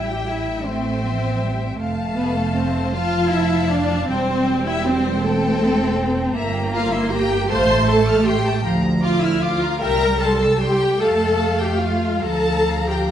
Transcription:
Already playing: A1 G3 E5 G5
0.09 G4 G5
0.28 E4 E5
0.66 A3 C4 C5 E5 G5
1.05 F3
1.43 G3
1.80 F1 A3 F5 A5
2.16 B3 B4
2.35 A3 A4
2.54 C4 C5
2.94 F3 F4 F5 A5
3.33 E4 E5
3.71 D4 D5
4.08 E1 G3 C4 C5 G5
4.67 E4 E5
4.85 C4 C5
5.23 A3 C4 A4
6.35 G1 A#3 E5 A#5
6.55 G5
6.73 F4 F5 A#5
6.92 E4 E5 C6
7.11 G4 G5 A#5
7.30 G5
7.49 A1 A3 C5 F5 A5 C6
7.68 A5
7.88 A4 A5 C6
8.09 F6
8.26 G4 G5 C6
8.46 A5
8.64 D2 F3 F5 A#5
8.84 A#5
9.03 F4 F5 D6
9.22 E4 E5 F6
9.41 F4 F5 D6
9.62 A#5
9.81 C2 G3 A#4 E5 G5 A#5
10.01 G5
10.20 A4 A5 C6
10.42 E6
10.61 G4 G5 C6
10.83 G5
11.01 F2 A3 A4 F5 A5
11.61 G4 G5
11.82 F4 F5
12.23 D2 F3 A4 F5 A5 A#5
12.89 G4 G5

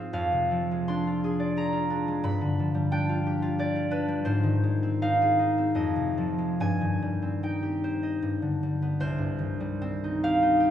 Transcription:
Already playing: G#2 F3 G#3 C4 F4 G#4 C5 D#5 F5
0.13 F2 F5
0.32 C3
0.51 F3
0.71 G#3
0.88 D4 C6
1.07 F4
1.24 G#4
1.40 D5
1.57 G#4 A#5
1.73 F4
1.90 D4
2.08 G#3
2.24 G2 B5
2.41 D3
2.59 F3
2.74 G3
2.92 D4 G5
3.09 F4
3.27 G4
3.42 F4
3.59 G4 D5
3.76 F4
3.91 D4 B4
4.08 G3
4.25 G#2 C5
4.43 D#3
4.64 G#3
4.83 C4
5.02 D#4 F5
5.22 G#4
5.39 D#4
5.58 C4
5.75 F2 D#5
5.96 C3
6.18 F3
6.38 G#3
6.60 G2 G#5
6.81 D#3
7.02 G3
7.22 C4
7.43 D#4 G5
7.63 G4
7.84 C5
8.03 D#5
8.22 G2
8.42 D3
8.63 G3
8.82 B3
9.00 C2 C5
9.18 G2
9.39 D#3
9.60 G3
9.82 C4
10.04 D#4
10.24 G4 F5
10.42 D#4
10.60 G4

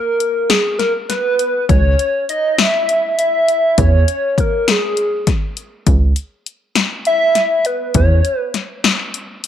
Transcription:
Already playing: A#4
0.20 closed hi-hat
0.50 G#4, snare, closed hi-hat
0.79 A#4, snare, closed hi-hat
1.09 B4, snare, closed hi-hat
1.39 closed hi-hat
1.69 C#2 C#5, kick, closed hi-hat
1.99 closed hi-hat
2.29 D#5, closed hi-hat
2.59 E5, snare, closed hi-hat
2.89 closed hi-hat
3.19 E5, closed hi-hat
3.49 closed hi-hat
3.78 E2 C#5, kick, closed hi-hat
4.08 closed hi-hat
4.38 A#4, kick, closed hi-hat
4.68 G#4, snare, closed hi-hat
4.97 closed hi-hat
5.27 kick, snare, closed hi-hat
5.57 closed hi-hat
5.87 C#2, kick, closed hi-hat
6.16 closed hi-hat
6.46 closed hi-hat
6.75 snare, closed hi-hat
7.05 E5, closed hi-hat
7.35 snare, closed hi-hat
7.65 B4, closed hi-hat
7.94 E2 C#5, kick, closed hi-hat
8.25 closed hi-hat
8.38 B4
8.54 snare, closed hi-hat
8.84 snare, closed hi-hat
9.14 closed hi-hat
9.44 closed hi-hat

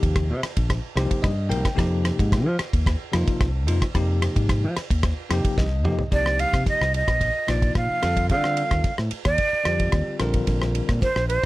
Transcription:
Already playing: C3 F3 A#3 D#4 G4
0.03 D#2, kick, ride
0.16 kick, cross-stick, ride
0.30 C3
0.43 muted fingered electric bass stroke, cross-stick, ride
0.57 A#1, kick, ride
0.70 kick, cross-stick, ride
0.95 C2 C3 F3 A#3 D#4 G4 C5, cross-stick, ride
1.11 kick, ride
1.23 G2 D#5, kick, cross-stick, ride
1.49 C2 C3 F3 A#3 D#4 A#4 G5, ride
1.65 kick, cross-stick, ride
1.75 F2 C3 F3 A#3 D#4 G4, kick, cross-stick, ride
2.05 cross-stick, ride
2.19 G#2, kick, ride
2.32 kick, cross-stick, ride
2.46 F3
2.59 muted fingered electric bass stroke, cross-stick, ride
2.73 D#2, kick, ride
2.86 kick, cross-stick, ride
3.12 F2 C3 F3 A#3 D#4 F4, cross-stick, ride
3.28 muted fingered electric bass stroke, kick, ride
3.41 C2, kick, cross-stick, ride
3.66 F2 C3 F3 A#3 D#4 F4, ride
3.82 kick, cross-stick, ride
3.94 F2 C3 F3 A#3 D#4 G4, kick, cross-stick, ride
4.22 cross-stick, ride
4.36 G#2, kick, ride
4.49 kick, cross-stick, ride
4.64 F3
4.77 muted fingered electric bass stroke, cross-stick, ride
4.90 D#2, kick, ride
5.03 kick, cross-stick, ride
5.30 F2 C3 F3 A#3 D#4 G4 G5, cross-stick, ride
5.45 kick, ride
5.58 C2 D#5, kick, snare
5.83 F2 C3 F3 A#3 D#4 G4, mid tom
5.99 floor tom
6.11 C2 C3 F3 A#3 D#4 G4 D5, kick, ride
6.26 cross-stick
6.39 F5, ride
6.53 C3, kick, cross-stick, ride
6.66 D#5, kick, ride
6.81 C2, cross-stick
6.94 D#5, ride
7.08 A#1, kick, cross-stick, ride
7.21 kick, ride
7.47 A#1 C3 F3 A#3 D#4 F4 D5, cross-stick, ride
7.62 kick, ride
7.75 A#2 F5, kick, cross-stick, ride
7.90 muted fingered electric bass stroke
8.01 F2 D3 G3 C4 F4 A4, cross-stick, ride
8.17 kick, ride
8.30 D3 F5, kick, ride
8.44 cross-stick
8.57 ride
8.71 D#2, kick, cross-stick, ride
8.84 muted fingered electric bass stroke, kick, ride
8.98 A2, cross-stick
9.11 muted fingered electric bass stroke, ride
9.25 D#2 D5, kick, cross-stick, ride
9.38 kick, ride
9.53 muted fingered electric bass stroke
9.64 F2 D3 G3 C4 F4 G4, cross-stick, ride
9.80 kick, ride
9.92 D#2, kick, cross-stick, ride
10.19 A#1 D3 G3 C4 F4 A#4, cross-stick, ride
10.34 kick, ride
10.47 A#1, kick, ride
10.62 cross-stick
10.75 ride
10.89 A#2, kick, cross-stick, ride
11.02 C5, kick, ride
11.16 A#1, cross-stick
11.28 C5, ride

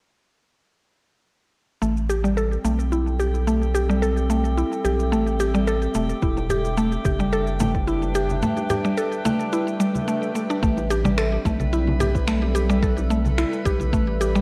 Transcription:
1.82 A1 G3 A3 G4 G5, shaker
1.97 C4, shaker
2.06 G4 A4, shaker
2.24 G3, shaker
2.37 A4, shaker
2.52 shaker
2.64 B1 A3, shaker
2.80 shaker
2.92 E4, shaker
3.07 shaker
3.20 G4, shaker
3.26 E5
3.35 shaker
3.47 A3, shaker
3.62 shaker
3.74 G4, shaker
3.89 G3, shaker
4.02 A4, shaker
4.17 shaker
4.30 A3, shaker
4.45 shaker
4.57 E4, shaker
4.72 shaker
4.85 B1 G4, shaker
5.00 shaker
5.12 A1 A3, shaker
5.27 shaker
5.40 G4, shaker
5.55 G3, shaker
5.67 A4, shaker
5.82 shaker
5.95 E1 A3, shaker
6.09 shaker
6.22 E1 E4, kick, shaker
6.32 D4
6.37 high bongo, shaker
6.49 G4, low conga, shaker
6.65 shaker
6.77 A3, shaker
6.92 shaker
7.05 F#1 G4, kick, high bongo, high conga, shaker
7.20 G3, shaker
7.32 A4, shaker
7.38 B4
7.47 shaker
7.60 A3, high conga, low conga, shaker
7.75 kick, high bongo, shaker
7.87 E4, shaker
8.02 high bongo, shaker
8.15 G4, shaker
8.30 high conga, shaker
8.42 A3, low conga, shaker
8.57 high bongo, shaker
8.70 G4, high bongo, low conga, shaker
8.85 G3, shaker
8.98 A4, shaker
9.12 shaker
9.25 A3, high bongo, high conga, shaker
9.40 shaker
9.53 E4, swell, shaker
9.68 shaker
9.80 G3, shaker
9.95 high conga, shaker
10.08 A3, shaker
10.23 shaker
10.35 A3, shaker
10.50 D4, shaker
10.63 A1 A3 B4 B5, kick, shaker
10.75 C4, high bongo, shaker
10.90 G4, shaker
11.04 G3, high conga, shaker
11.18 A4, finger snap, shaker
11.45 B1 A3, kick, high bongo, shaker
11.60 high conga, shaker
11.66 A4
11.73 E4, shaker
11.88 high conga
12.00 G4, high conga, low conga, shaker
12.15 kick, high bongo, shaker
12.28 A3, finger snap, shaker
12.43 high bongo
12.55 G4, shaker
12.70 G3, shaker
12.83 A4, kick, shaker
12.98 high bongo, shaker
13.10 A3, shaker
13.25 high conga, shaker
13.38 E4, finger snap, shaker
13.53 shaker
13.65 B1 G4, kick, high bongo, shaker
13.80 high conga, shaker
13.93 A1 A3, kick, shaker
14.21 G4, shaker
14.35 G3, shaker

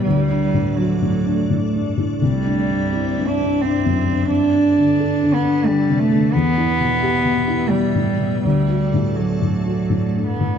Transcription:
0.04 D2 G3 A3 D4 D5
0.29 D4
0.54 A2
0.76 F#3 F#4
1.02 A2
1.26 D4
1.50 A2
1.75 G2
1.97 A2
2.22 C2 G3 C4 E4
2.46 D4
2.70 G2
2.93 E4
3.17 G2
3.27 D4
3.40 D4
3.61 G2 C4
3.86 F#2
4.09 G2
4.30 G2 B3 D4 A4
4.55 D4
4.78 D3
5.00 A4
5.23 D3
5.34 B3
5.45 D4
5.67 D3 G3
5.90 C3
5.99 A3
6.12 D3
6.33 E2 B3 G4 E5
6.58 E4
6.80 B2
7.03 G4
7.25 B2
7.48 E4
7.69 B2 G3
7.95 A2
8.20 B2
8.43 D2 G3 A3 A4 D5
8.69 F#4
8.94 A2
9.16 F#3 A4
9.42 A2
9.66 F#4
9.90 A2
10.15 G2
10.26 B3
10.40 A2

